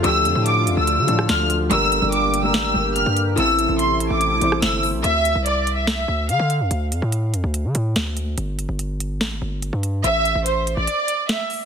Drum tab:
HH |x-x-x-x-x-x-x-x-|x-x-x-x-----x-x-|x-x-x-x-x-x-x-o-|x-x-x-x-----x-x-|
SD |-----------ro---|--------o-------|-----------ro---|--------o-------|

HH |x-x-x-x-x-x-x-x-|x-x-x-x-----x-x-|x-x-x-x-x-x-x-o-|
SD |------------o---|--------o-------|------------o---|